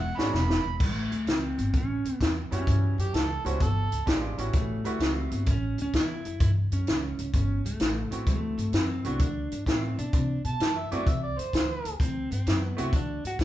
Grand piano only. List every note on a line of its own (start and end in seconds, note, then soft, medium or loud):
0.17 0.32 G#3 medium
0.17 0.32 B3 medium
0.17 0.32 C#4 medium
0.17 0.32 D4 medium
0.17 0.33 F#4 medium
2.51 3.10 G3 medium
2.51 3.11 B3 medium
2.51 3.11 C#4 medium
2.51 3.11 E4 medium
2.51 3.11 F#4 medium
3.45 3.59 G3 medium
3.45 3.59 B3 medium
3.45 3.59 C#4 medium
3.45 3.59 E4 medium
3.45 3.60 F#4 medium
4.06 4.35 G#3 medium
4.06 4.35 C4 medium
4.06 4.36 D4 medium
4.06 4.36 F4 medium
4.06 4.36 G4 medium
4.38 4.79 G3 medium
4.38 4.79 B3 medium
4.38 4.79 C#4 medium
4.38 4.79 E4 medium
4.38 4.80 F#4 medium
4.85 5.44 G3 medium
4.85 5.45 A3 medium
4.85 5.45 E4 medium
4.85 5.45 F#4 medium
4.85 5.44 B4 medium
8.11 8.70 A3 medium
8.11 8.70 B3 medium
8.11 8.71 C4 medium
8.11 8.71 E4 medium
8.11 8.71 F#4 medium
9.04 9.18 A3 medium
9.04 9.19 B3 medium
9.04 9.19 C4 medium
9.04 9.19 E4 medium
9.04 9.19 F#4 medium
9.66 9.95 A3 medium
9.66 9.95 B3 medium
9.66 9.95 C4 medium
9.66 9.96 E4 medium
9.66 9.96 A4 medium
10.92 11.05 A3 medium
10.92 11.05 B3 medium
10.92 11.05 C4 medium
10.92 11.06 E4 medium
10.92 11.06 F#4 medium
12.77 12.91 A3 medium
12.77 12.91 B3 medium
12.77 12.91 C4 medium
12.77 12.91 E4 medium
12.77 12.92 F#4 medium